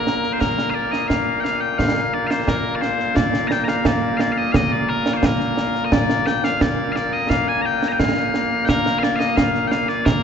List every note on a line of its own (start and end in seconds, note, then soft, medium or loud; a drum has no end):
0.00 10.23 A#2 medium
0.00 10.23 A#3 medium
0.00 0.33 A#4 medium
0.07 snare medium
0.24 snare soft
0.33 0.40 C5 medium
0.40 0.70 A#4 medium
0.40 concert bass drum soft
0.40 snare medium
0.58 snare medium
0.70 0.75 F5 medium
0.75 0.91 D5 medium
0.91 1.08 D#5 medium
0.91 snare medium
1.08 1.40 F5 medium
1.08 concert bass drum soft
1.08 snare medium
1.40 1.61 F5 medium
1.40 1.44 G5 medium
1.45 snare medium
1.61 1.78 G5 medium
1.78 2.14 F5 medium
1.78 concert bass drum medium
1.78 snare medium
2.14 2.27 D5 medium
2.27 2.48 C5 medium
2.27 2.31 F5 medium
2.27 snare medium
2.48 2.75 A#4 medium
2.48 concert bass drum medium
2.48 snare medium
2.75 2.81 D5 medium
2.81 3.16 C5 medium
2.81 snare medium
3.00 snare soft
3.16 3.48 D5 medium
3.16 concert bass drum medium
3.16 snare medium
3.34 snare medium
3.48 3.52 A#5 loud
3.48 snare medium
3.52 3.64 G5 loud
3.64 3.68 A#5 medium
3.64 snare medium
3.68 3.86 F5 medium
3.85 4.17 D5 medium
3.85 concert bass drum medium
3.85 snare loud
4.17 4.32 D5 medium
4.17 4.21 F5 medium
4.17 snare medium
4.32 4.38 F5 medium
4.38 4.52 D#5 medium
4.52 4.72 D#5 loud
4.52 4.56 F5 loud
4.52 concert bass drum medium
4.52 snare loud
4.72 4.89 D5 medium
4.89 5.14 A#4 medium
5.06 snare medium
5.14 5.25 C5 medium
5.14 5.17 D5 medium
5.23 5.85 A#4 medium
5.23 concert bass drum medium
5.23 snare loud
5.40 snare soft
5.57 snare medium
5.75 snare soft
5.85 5.93 D#5 medium
5.92 6.26 D5 loud
5.92 concert bass drum medium
5.92 snare loud
6.09 snare medium
6.26 6.44 G5 loud
6.26 snare medium
6.44 6.62 F5 medium
6.44 snare medium
6.61 6.92 D5 medium
6.61 concert bass drum medium
6.61 snare loud
6.92 7.13 D5 medium
6.92 6.96 F5 medium
6.92 snare medium
7.13 7.30 D#5 loud
7.30 7.48 F5 loud
7.30 concert bass drum medium
7.30 snare medium
7.48 7.62 G#5 loud
7.62 7.88 G5 loud
7.62 7.66 A#5 loud
7.83 snare medium
7.88 7.92 A#5 medium
7.92 7.99 G5 medium
7.99 8.65 F5 medium
7.99 concert bass drum medium
7.99 snare medium
8.17 snare soft
8.34 snare medium
8.65 8.99 A#4 loud
8.65 8.69 G5 loud
8.65 concert bass drum medium
8.65 snare loud
8.86 snare medium
8.99 9.03 F5 loud
9.03 9.16 D5 loud
9.03 snare medium
9.16 9.37 D#5 medium
9.16 9.19 F5 medium
9.20 snare medium
9.37 9.68 F5 medium
9.37 concert bass drum medium
9.37 snare loud
9.55 snare soft
9.68 9.89 F5 medium
9.68 9.71 G5 medium
9.68 snare medium
9.89 10.06 D5 loud
9.89 snare soft
10.06 10.23 A#4 medium
10.06 concert bass drum medium
10.06 snare loud